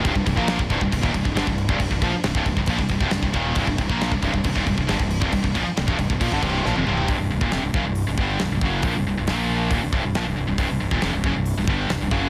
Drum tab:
CC |x-x-x-x-x-x-x-x-|x-x-x-x-x-x-x-x-|x-x-x-x-x-x-x-x-|x-x-x-x-x-x-----|
HH |----------------|----------------|----------------|----------------|
SD |----o-------o---|----o-------o---|----o-------o---|----o-------o---|
T1 |----------------|----------------|----------------|-------------o--|
T2 |----------------|----------------|----------------|--------------o-|
FT |----------------|----------------|----------------|---------------o|
BD |oooo-ooooooo-o-o|ooo--ooooooo-oo-|oooo-ooooooo-o-o|ooo--oooooo-----|

CC |----------------|----------------|----------------|
HH |o---o---o---o---|o---o---o---o---|o---o---o---o---|
SD |----o-------o---|----o-------o---|----o-------o---|
T1 |----------------|----------------|----------------|
T2 |----------------|----------------|----------------|
FT |----------------|----------------|----------------|
BD |o--o--o---o---o-|o-------o-o-----|o--o--o---o---o-|